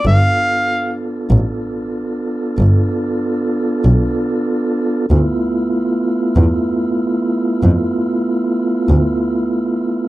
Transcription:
X:1
M:12/8
L:1/8
Q:3/8=48
K:Gmix
V:1 name="Harmonica"
f2 z8 z2 | z12 |]
V:2 name="Tonewheel organ"
[B,DFA]12 | [A,B,EF]12 |]
V:3 name="Double bass" clef=bass
G,,,3 A,,,3 G,,,3 B,,,3 | D,,3 E,,3 F,,3 D,,3 |]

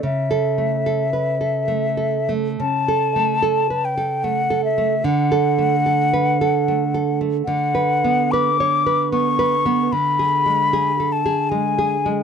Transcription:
X:1
M:3/4
L:1/8
Q:1/4=74
K:D
V:1 name="Flute"
e6 | a3 g f e | f4- f z | [K:Bdor] f2 d'2 c'2 |
b3 a g2 |]
V:2 name="Nylon-string guitar"
(3C, A A, (3A B A (3A, A A, | (3C, A A, (3A B A (3A, A A, | (3D, A A, (3A B A (3A, A A, | [K:Bdor] (3D, B B, (3B c B (3B, B B, |
(3D, G G, (3G A G (3G, G G, |]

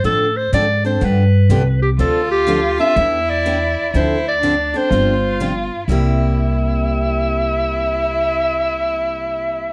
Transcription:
X:1
M:4/4
L:1/8
Q:"Swing" 1/4=123
K:Cmix
V:1 name="Clarinet"
A c d c =B3 G | A G2 e2 d3 | c d2 c3 z2 | e8- |
e8 |]
V:2 name="Violin"
z8 | F4 E4 | E2 D2 F4 | E8- |
E8 |]
V:3 name="Steel-string acoustic guitar"
[D,F,CDA] z [D,F,CDA] [CDA] [D,F,=B,DG] z [D,F,B,DG] z | [D,F,CDA] z [D,F,CDA] [CDA] [E,=B,DG] z [E,B,DG] z | [D,F,CDA] z [D,F,CDA] [CDA] [C,F,CDG] z [C,F,CDG] z | [C,G,B,EG]8- |
[C,G,B,EG]8 |]
V:4 name="Upright bass" clef=bass
A,,2 _A,,2 G,,2 C,,2 | D,,4 E,,4 | D,,4 G,,,4 | C,,8- |
C,,8 |]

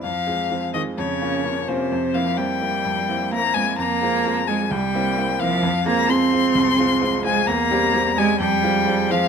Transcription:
X:1
M:4/4
L:1/8
Q:1/4=129
K:Fm
V:1 name="Violin"
f3 e d3 c- | c f g4 b a | b3 a g3 f- | f b c'4- c' a |
b3 a g3 f |]
V:2 name="Grand piano"
F,, [A,CF] [A,CF] [A,CF] F,, [B,DF] [B,DF] [B,DF] | F,, [B,C=E] [B,CE] [B,CE] F,, [B,CE] [B,CE] [B,CE] | F,, [A,CF] [A,CF] [A,CF] C,, [B,C=E] [B,CE] [B,CE] | F,, [A,CF] [A,CF] [A,CF] C,, [A,CF] [A,CF] [A,CF] |
=E,, [G,CG] [G,CG] [G,CG] F,, [A,CF] [A,CF] [A,CF] |]
V:3 name="Cello" clef=bass
F,3 E, D,3 C,- | C, F, G,4 B, A, | B,3 A, G,3 F,- | F, B, C4- C A, |
B,3 A, G,3 F, |]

